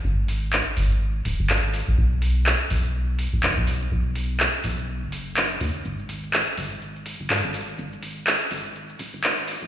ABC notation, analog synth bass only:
X:1
M:4/4
L:1/16
Q:"Swing 16ths" 1/4=124
K:B
V:1 name="Analog synth bass" clef=bass
G,,,4- G,,, z G,,,4 D,,, G,,,4 B,,, | B,,,4- B,,, z B,,,4- B,,, B,,, F,,, B,,,3 | B,,,4- B,,, z B,,,3 F,,,4- F,,, D,, z | G,,,4- G,,, z G,,,4- G,,, G,,, G,, G,,,3 |
G,,,4- G,,, z G,,,4 D,,, G,,,4 B,,, |]